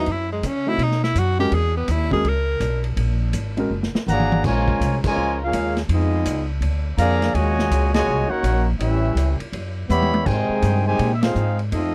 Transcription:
Already playing: tenor saxophone D#4
0.06 upright bass F#2, ride
0.12 tenor saxophone E4
0.32 tenor saxophone G#3
0.43 upright bass C#3, tenor saxophone C#4, hi-hat pedal, ride
0.66 grand piano A3 C4 D#4 F#4, tenor saxophone E4
0.78 upright bass B2, ride
0.83 tenor saxophone D#4
0.91 snare
1.04 tenor saxophone E4, snare
1.15 upright bass F#2, tenor saxophone F#4, hi-hat pedal, ride
1.39 grand piano G#3 C#4 F#4 A#4, tenor saxophone G4
1.52 upright bass E2, tenor saxophone G#4, ride
1.77 tenor saxophone B3
1.88 upright bass D#2, tenor saxophone E4, hi-hat pedal, ride
2.11 grand piano G#3 C#4 F#4 A#4, tenor saxophone G#4, kick
2.24 upright bass C#2, ride
2.28 tenor saxophone A#4
2.60 upright bass B1, hi-hat pedal, ride
2.84 ride
2.97 upright bass A#1, ride
3.33 upright bass G#1, hi-hat pedal, ride
3.57 grand piano G#3 C#4 F#4 A#4, ride
3.70 upright bass F#1
3.83 snare
3.94 muted upright bass stroke, snare
4.07 upright bass G#1, trombone section D3 F#3 A#3, trumpet section G#4 D5 F#5 A#5, hi-hat pedal, mid tom
4.20 mid tom
4.32 mid tom
4.44 upright bass A#1, trombone section C#3 F3 G#3, trumpet section F4 A#4 C#5 G#5, kick, crash
4.68 kick
4.80 upright bass C2, hi-hat pedal, ride
5.04 trombone section C#3 F3 G#3, muted upright bass stroke, kick, crash
5.08 trumpet section F4 A#4 C#5 G#5
5.17 upright bass C#2
5.44 trombone section G#3 C#4 F4, trumpet section C#4 G#4 A#4 F5
5.52 upright bass D#2, hi-hat pedal, ride
5.77 snare, ride
5.89 upright bass F2, trombone section G#3 B3 D#4, ride
5.94 trumpet section B3 F4 G#4 D#5
6.25 upright bass C#2, hi-hat pedal, ride
6.60 upright bass D2, ride
6.98 upright bass F2, trombone section D3 F3 A#3, trumpet section G#4 D5 F5 A#5, hi-hat pedal, ride
7.22 snare, ride
7.34 upright bass D#2, trombone section A#2 C#3 G#3, trumpet section F#4 C#5 D#5 G#5, ride
7.59 snare
7.70 upright bass C#2, hi-hat pedal, ride
7.94 trombone section A#2 C#3 G#3, trumpet section F#4 C#5 D#5 G#5, snare, ride
8.07 upright bass C2
8.30 trombone section A#3 C#4 F#4, trumpet section D#4 A#4 C#5 F#5, muted upright bass stroke
8.43 upright bass A#1, hi-hat pedal, ride
8.79 upright bass A1, trombone section G3 C#4 E4, trumpet section C#4 G4 B4 E5, ride
9.15 upright bass C#2, hi-hat pedal, ride
9.40 muted upright bass stroke, ride
9.53 upright bass F#2, ride
9.89 upright bass E2, trombone section E3 G3 B3, trumpet section G4 C#5 E5 B5, hi-hat pedal, high tom
10.02 high tom
10.14 high tom
10.26 upright bass G#2, trombone section C3 D#3 G#3, trumpet section D#4 C5 G5 G#5, kick, crash
10.49 muted upright bass stroke
10.62 upright bass G2, hi-hat pedal, ride
10.86 trombone section C3 D#3 G#3, trumpet section D#4 G4 C5 G#5
10.99 upright bass A#2, ride
11.15 trumpet section E5
11.23 trombone section G#3 C4 F4, trumpet section D#4 G#4 C5 F5, snare, ride
11.35 upright bass G#2, hi-hat pedal
11.59 ride
11.72 upright bass F2, trombone section A3 C4 D#4, trumpet section C4 F4 A4 D#5, ride

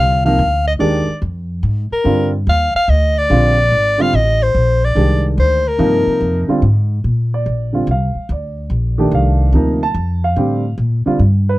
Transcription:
Already playing: upright bass C2, grand piano D3 G3 C4 F4, soprano saxophone F5
0.25 grand piano C3 F3 A#3 D#4, soprano saxophone F5
0.39 upright bass D2
0.68 soprano saxophone D#5
0.79 upright bass D#2, grand piano D#3 G#3 D4 G4, soprano saxophone D5
1.08 muted upright bass stroke
1.22 upright bass F2
1.63 upright bass G#2
1.91 soprano saxophone A#4, muted upright bass stroke
2.04 upright bass G2, grand piano D3 G3 C4 F4
2.47 upright bass D#2, soprano saxophone F5
2.75 soprano saxophone F5, muted upright bass stroke
2.88 upright bass D2, soprano saxophone D#5
3.18 soprano saxophone D5
3.30 upright bass A#1, grand piano D3 G3 C4 F4
3.71 upright bass G#1
3.98 grand piano D3 G3 C4 F4, soprano saxophone F5
4.13 upright bass A1, soprano saxophone D#5
4.43 soprano saxophone C5
4.55 upright bass A#1
4.85 soprano saxophone D5
4.95 upright bass C2, grand piano D#3 G#3 D4 G4
5.38 upright bass D2, soprano saxophone C5
5.68 soprano saxophone A#4
5.78 upright bass G2, grand piano C3 F3 A#3 D#4
6.07 muted upright bass stroke
6.21 upright bass F2
6.48 grand piano D3 G3 C4 F4, muted upright bass stroke
6.62 upright bass G#2
7.04 upright bass A#2
7.34 grand piano D5
7.46 upright bass A#1
7.73 grand piano D3 G3 C4 F4
7.87 upright bass C2
7.91 grand piano F5
8.15 muted upright bass stroke
8.29 upright bass D2, grand piano D5
8.70 upright bass A#1
8.98 grand piano D#3 A3 D4 G4
9.11 upright bass C2, grand piano F5
9.53 upright bass D2, grand piano C3 F3 A#3 D#4
9.83 grand piano A5
9.94 upright bass F2
10.24 grand piano F5
10.36 upright bass A2, grand piano D3 G3 C4 G4
10.78 upright bass A#2
11.06 grand piano D3 G3 C4 F4, muted upright bass stroke
11.19 upright bass G2
11.49 grand piano B4

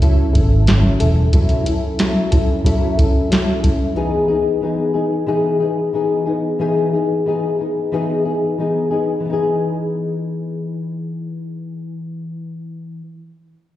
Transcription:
Already playing: fingered electric bass C#2
0.01 nylon-string guitar F#3 C#4 E4 A4, kick, closed hi-hat
0.33 fingered electric bass G#1, nylon-string guitar C#4 E4 A4, kick, closed hi-hat
0.67 nylon-string guitar F#3 C#4 E4 A4, snare, closed hi-hat
1.00 fingered electric bass E1, nylon-string guitar C#4 E4 A4, closed hi-hat
1.33 nylon-string guitar F#3 C#4 E4 A4, kick, closed hi-hat
1.49 closed hi-hat
1.66 nylon-string guitar C#4 E4 A4, closed hi-hat
1.99 nylon-string guitar F#3 C#4 E4 A4, snare, closed hi-hat
2.31 nylon-string guitar C#4 E4 A4, kick, closed hi-hat
2.64 nylon-string guitar F#3 C#4 E4 A4, kick, closed hi-hat
2.97 nylon-string guitar C#4 E4 A4, kick, closed hi-hat
3.30 nylon-string guitar F#3 C#4 E4 A4, snare, closed hi-hat
3.63 nylon-string guitar C#4 E4 A4, kick, closed hi-hat
3.95 nylon-string guitar E3 B3 D#4 G#4
4.28 nylon-string guitar B3 D#4 G#4
4.61 nylon-string guitar E3 B3 D#4 G#4
4.94 nylon-string guitar B3 D#4 G#4
5.27 nylon-string guitar E3 B3 D#4 G#4
5.60 nylon-string guitar B3 D#4 G#4
5.93 nylon-string guitar E3 B3 D#4 G#4
6.26 nylon-string guitar B3 D#4 G#4
6.59 nylon-string guitar E3 B3 D#4 G#4
6.93 nylon-string guitar B3 D#4 G#4
7.25 nylon-string guitar E3 B3 D#4 G#4
7.59 nylon-string guitar B3 D#4 G#4
7.92 nylon-string guitar E3 B3 D#4 G#4
8.25 nylon-string guitar B3 D#4 G#4
8.58 nylon-string guitar E3 B3 D#4 G#4
8.91 nylon-string guitar B3 D#4 G#4
9.20 nylon-string guitar E3
9.25 nylon-string guitar B3
9.30 nylon-string guitar D#4 G#4

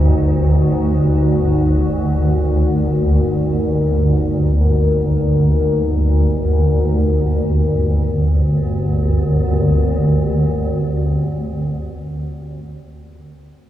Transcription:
Already playing: synth drone G1 D2, ambient pad D#4 F#4 C5, singing bowl A#4
0.24 ambient pad A#4
7.45 synth drone G1 D2, ambient pad C4
7.60 ambient pad G4
7.77 ambient pad A#4

